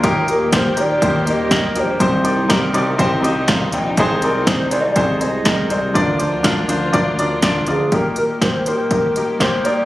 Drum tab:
HH |x-x-x-x-x-x-x-x-|x-x-x-x-x-x-x-x-|x-x-x-x-x-x-x-x-|x-x-x-x-x-x-x-x-|
SD |----o-------o---|----o-------o---|----o-------o---|----o-------o---|
FT |-------------oo-|-------------oo-|-------------oo-|--o----------oo-|
BD |o---o---o---o---|o---o---o---o---|o---o---o---o---|o---o---o---o---|

HH |x-x-x-x-x-x-x-x-|
SD |----o-------o---|
FT |----------------|
BD |o---o---o---o---|